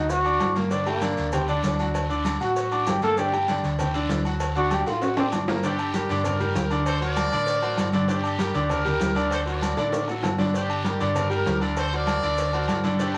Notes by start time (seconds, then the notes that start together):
Already playing: D2 F#3 D#4 F#4 F#5
0.09 F#4, cowbell, high conga, long guiro, maracas
0.25 D4 D5 D6, high conga, low agogo, maracas
0.40 G1, cowbell, high conga, low timbale, low agogo, short guiro, maracas
0.55 A#3 A#4 A#5, cowbell, high conga, short guiro, maracas
0.71 D3 D4 D5, cowbell, high conga, long guiro, maracas
0.86 G3 A#3 G4 G5, low agogo, maracas
1.01 D3 D4 D5, cowbell, high conga, low timbale, low agogo, short guiro, maracas
1.17 D2, cowbell, high conga, short guiro, maracas
1.32 G3 C4 G4 G5, cowbell, high conga, low conga, low agogo, long guiro, maracas
1.48 D3 D4 D5, high conga, low agogo, maracas
1.63 D2 D4, cowbell, high conga, low timbale, short guiro, maracas
1.79 F#3 F#4 F#5, high conga, low agogo, short guiro, maracas
1.94 cowbell, high conga, low agogo, long guiro, maracas
2.09 D3 D4 D5, high conga, maracas
2.25 cowbell, high conga, low timbale, low agogo, short guiro, maracas
2.40 A1 F#3 F#4 F#5, high conga, low agogo, short guiro, maracas
2.56 cowbell, high conga, long guiro, maracas
2.71 D4 D5 D6, high conga, low agogo, maracas
2.86 G1 G4, cowbell, high conga, low timbale, low agogo, short guiro, maracas
3.02 A#3 A4 A#4 A#5, cowbell, high conga, short guiro, maracas
3.17 D3 D4 G4 D5, cowbell, high conga, long guiro, maracas
3.33 G3 G4 G5, high conga, low agogo, maracas
3.48 D3 D4 D5, cowbell, high conga, low timbale, low agogo, short guiro, maracas
3.63 D2, cowbell, high conga, short guiro, maracas
3.79 G3 G4 G5, cowbell, high conga, low conga, low agogo, long guiro, maracas
3.94 D3 D4 D5, high conga, low agogo, maracas
4.09 D2, cowbell, high conga, low timbale, short guiro, maracas
4.25 F#3 F#4 F#5, high conga, low agogo, short guiro, maracas
4.40 cowbell, low agogo, long guiro, maracas
4.56 D3 D4 F#4 D5, high conga, maracas
4.71 G4, cowbell, high conga, low timbale, low agogo, short guiro, maracas
4.86 A1 F#3 F4 F#4 F#5, high bongo, high conga, low agogo, short guiro, maracas
5.01 F#4, cowbell, high conga, high timbale, long guiro, maracas
5.17 C4 D4 D5 D6, low bongo, high conga, high timbale, low agogo, maracas
5.32 G1, cowbell, low bongo, high conga, low agogo, short guiro, maracas
5.48 A#3 A#4 A#5, cowbell, low bongo, high conga, low timbale, short guiro, maracas
5.63 D3 D4 G4 D5, cowbell, high conga, long guiro, maracas
5.79 high conga, low agogo, maracas
5.94 G3 G4 A#4, cowbell, high conga, low timbale, low agogo, short guiro, maracas
6.09 G2 D3 D4 D5, cowbell, short guiro, maracas
6.24 G4 A#4, cowbell, high conga, low conga, low agogo, long guiro, maracas
6.40 G3 G4 A#4, high conga, low conga, low agogo, maracas
6.55 D2, cowbell, high conga, low timbale, short guiro, maracas
6.71 D3 D4 D5, high conga, low agogo, short guiro, maracas
6.86 A4 C5, cowbell, high conga, low agogo, long guiro, maracas
7.01 F#3 F#4 A#4 C5 D5, high conga, maracas
7.16 cowbell, high conga, low timbale, low agogo, short guiro, maracas
7.31 A1 D3 D4 D5, high conga, low agogo, short guiro, maracas
7.47 cowbell, long guiro, maracas
7.62 F#3 F#4 C5, high conga, low agogo, maracas
7.77 G1, cowbell, high conga, low timbale, low agogo, short guiro, maracas
7.92 D3 D4 D5, cowbell, high conga, short guiro, maracas
8.08 D3 D4 G4 D5, cowbell, high conga, long guiro, maracas
8.23 high conga, low agogo, maracas
8.39 G3 G4 A#4, cowbell, high conga, low timbale, low agogo, short guiro, maracas
8.54 D2 D3 D4 D5, cowbell, short guiro, maracas
8.69 G4 A#4, cowbell, high conga, low conga, low agogo, long guiro, maracas
8.85 G3 G4 A#4, high conga, low conga, low agogo, maracas
9.00 D2, cowbell, high conga, low timbale, short guiro, maracas
9.15 D3 D4 D5, high conga, low agogo, short guiro, maracas
9.30 A4 C5, cowbell, low agogo, long guiro, maracas
9.46 F#3 F#4 A#4 C5 D5, high conga, maracas
9.61 cowbell, high conga, low timbale, low agogo, short guiro, maracas
9.76 A1 D3 D4 D5, high bongo, high conga, low agogo, short guiro, maracas
9.92 cowbell, high bongo, high conga, long guiro, maracas
10.07 F#3 F#4 A4, low bongo, high conga, low agogo, maracas
10.23 G1, cowbell, low bongo, high conga, low timbale, low agogo, short guiro, maracas
10.38 D3 D4 D5, cowbell, low bongo, high conga, short guiro, maracas
10.54 D3 D4 G4 D5, cowbell, high conga, long guiro, maracas
10.70 high conga, low agogo, maracas
10.84 G3 G4 A#4, cowbell, high conga, low timbale, low agogo, short guiro, maracas
11.00 G2 D3 D4 D5, cowbell, high conga, short guiro, maracas
11.15 G4 A#4, cowbell, high conga, low conga, low agogo, long guiro, maracas
11.30 G3 G4 A#4, low agogo, maracas
11.46 D2, cowbell, high conga, low timbale, short guiro, maracas
11.61 D3 D4 D5, high conga, low agogo, short guiro, maracas
11.76 A4 C5, cowbell, low agogo, long guiro, maracas
11.92 F#3 F#4 A#4 C5 D5, high conga, maracas
12.07 cowbell, high conga, low timbale, low agogo, short guiro, maracas
12.22 D2 D3 D4 D5, high conga, low agogo, short guiro, maracas
12.38 cowbell, high conga, long guiro, maracas
12.53 F#3 F#4 C5, high conga, low agogo, maracas
12.68 G1, cowbell, high conga, low timbale, low agogo, short guiro, maracas
12.83 D3 D4 D5, cowbell, high conga, short guiro, maracas
12.99 D3 D4 G4 D5, cowbell, high conga, long guiro, maracas
13.14 high conga, low agogo